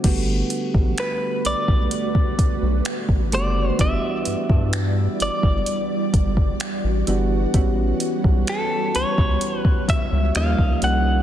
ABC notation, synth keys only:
X:1
M:4/4
L:1/8
Q:1/4=64
K:G
V:1 name="Synth keys"
[D,G,A,B,F]3 z4 [D,G,A,B,F] | [E,G,B,DF]3 z4 [E,G,B,DF] | [E,G,B,^CF]3 z3 [=F,G,_B,_D_E] [F,G,B,DE] |]